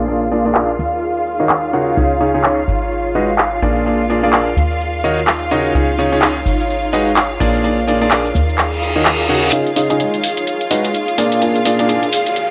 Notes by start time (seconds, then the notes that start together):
Already playing: A#1 F4 G#4 F5
0.08 A#2 D4 F4 G#4 A#4 D5, shaker
0.28 A#2 D4 F4 G#4 A#4 D5 F5
0.32 shaker
0.45 A#2 D4 F4 G#4 A#4 D5, shaker
0.55 D4 F4 G#4 A#4 D5, clap, shaker
0.69 shaker
0.79 D#2 D#4, shaker
0.93 shaker
1.03 C#5, shaker
1.26 shaker
1.40 D#3 D#4 F#4 A#4 C#5 D#5, shaker
1.49 clap, shaker
1.64 shaker
1.73 C#3 D#4 F#4 A#4 C#5 F#5, shaker
1.87 shaker
1.97 C#2 C#3 C#4 D#4 F4 G#4 C#5, shaker
2.20 C#3 C#4 D#4 F4 G#4 C#5, shaker
2.34 C#3 C#4 D#4 F4 G#4 C#5, shaker
2.44 C#4 D#4 F4 G#4 C#5, clap, shaker
2.58 shaker
2.68 G#1, shaker
2.82 shaker
2.92 shaker
3.15 G#3 D#4 F#4 G#4 B4 D#5, shaker
3.29 shaker
3.38 clap, shaker
3.62 A#1 A#2 D4 F4 G#4 A#4 D5, shaker
3.76 A#4, shaker
3.86 A#2 D4 F4 G#4 A#4 D5, shaker
3.96 F5
4.10 A#2 D4 F4 G#4 A#4 D5, shaker
4.23 A#2 D4 F4 G#4 A#4 D5, shaker
4.33 D4 F4 G#4 A#4 D5, clap, shaker
4.47 shaker
4.57 D#2 D#4, shaker
4.71 shaker
4.81 shaker
4.98 C#5
5.04 D#3 D#4 F#4 A#4 C#5 D#5, shaker
5.18 shaker
5.27 clap, shaker
5.51 C#3 D#4 F#4 A#4 C#5 D#5, shaker
5.66 shaker
5.75 C#2 C#3 C#4 D#4 F4 G#4 C#5, shaker
5.99 C#3 C#4 D#4 F4 G#4 C#5, shaker
6.12 C#3 C#4 D#4 F4 G#4 C#5, shaker
6.22 C#4 D#4 F4 G#4 C#5, clap, shaker
6.36 shaker
6.46 G#1, shaker
6.60 shaker
6.70 shaker
6.93 G#3 D#4 F#4 G#4 B4 D#5, shaker
7.07 shaker
7.16 clap, shaker
7.40 A#1 A#2 D4 F4 G#4 A#4 D5, shaker
7.46 A#4
7.55 shaker
7.64 A#2 D4 F4 G#4 A#4 D5, shaker
7.83 F5
7.87 A#2 D4 F4 G#4 A#4 D5, shaker
8.01 A#2 D4 F4 G#4 A#4 D5, shaker
8.11 D4 F4 G#4 A#4 D5, clap, shaker
8.25 shaker
8.35 D#2 D#4, shaker
8.49 shaker
8.58 clap, reverse cymbal, shaker
8.73 shaker
8.80 C#5, shaker
8.96 D#3 D#4 F#4 A#4 C#5 D#5, shaker
9.05 clap, shaker
9.20 shaker
9.29 C#3 D#4 F#4 A#4 C#5 F#5, shaker
9.43 shaker
9.53 C#3 D#4 F4 G#4 C#5 D#5 F5, closed hi-hat, riser, shaker
9.66 closed hi-hat
9.76 C#3 D#4 F4 G#4 C#5 D#5, open hi-hat, shaker
9.90 C#3 D#4 F4 G#4 C#5 D#5, closed hi-hat, shaker
10.00 G#3 D#4 F4 G#4 C#5 D#5, closed hi-hat, shaker
10.14 closed hi-hat, shaker
10.24 open hi-hat, shaker
10.37 closed hi-hat, shaker
10.47 closed hi-hat, shaker
10.61 closed hi-hat
10.71 G#3 D#4 F#4 G#4 B4 D#5, open hi-hat, shaker
10.85 closed hi-hat, shaker
10.94 closed hi-hat, shaker
11.08 closed hi-hat
11.18 A#2 D4 F4 G#4 A#4 D5, open hi-hat, shaker
11.32 closed hi-hat, shaker
11.42 A#2 D4 F4 G#4 A#4 D5, closed hi-hat, shaker
11.56 closed hi-hat
11.61 A#2 D4 F4 G#4 A#4 D5 F5
11.65 open hi-hat, shaker
11.79 A#2 D4 F4 G#4 A#4 D5, closed hi-hat, shaker
11.89 D4 F4 G#4 A#4 D5, closed hi-hat, shaker
12.03 closed hi-hat, shaker
12.12 D#4, open hi-hat, shaker
12.26 closed hi-hat, shaker
12.36 closed hi-hat, shaker